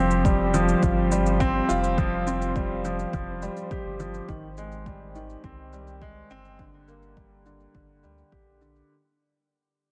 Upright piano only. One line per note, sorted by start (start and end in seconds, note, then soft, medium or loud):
0.00 0.23 C4 medium
0.25 0.52 G3 medium
0.54 0.81 F3 medium
0.83 1.10 F4 medium
1.12 1.28 G3 medium
1.40 1.68 C4 medium
1.69 1.96 F4 medium
1.98 2.25 F3 medium
2.27 2.54 C4 medium
2.56 2.83 G3 medium
2.85 3.12 F3 medium
3.14 3.41 F3 medium
3.42 3.59 G3 medium
3.71 3.99 G4 medium
4.00 4.27 F3 medium
4.29 4.45 D#3 medium
4.58 4.85 G#3 medium
4.87 5.14 G3 medium
5.15 5.43 D#3 medium
5.44 5.71 C4 medium
5.73 5.89 G3 medium
6.02 6.29 G#3 medium
6.31 6.58 C4 medium
6.59 6.87 D3 medium
6.88 7.16 A#3 medium
7.17 7.44 G3 medium
7.46 7.73 D3 medium
7.74 8.02 D3 medium
8.03 8.20 G3 medium
8.32 8.60 G4 medium
8.61 8.89 D3 medium